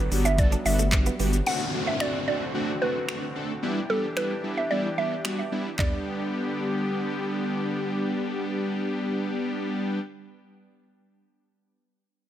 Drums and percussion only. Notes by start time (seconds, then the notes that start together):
0.12 open hi-hat, shaker
0.25 closed hi-hat, shaker
0.38 kick, closed hi-hat, shaker
0.52 closed hi-hat, shaker
0.66 open hi-hat, shaker
0.79 closed hi-hat, shaker
0.92 kick, clap, closed hi-hat, shaker
1.06 closed hi-hat, shaker
1.19 open hi-hat, shaker
1.33 closed hi-hat, shaker
1.47 crash
2.00 finger snap
3.09 finger snap
4.17 finger snap
5.25 finger snap
5.79 kick, clap, floor tom